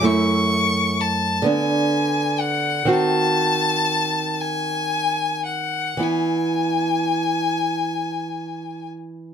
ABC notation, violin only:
X:1
M:6/8
L:1/8
Q:3/8=39
K:Emix
V:1 name="Violin"
c'2 a g2 f | a3 g2 f | g4- g z |]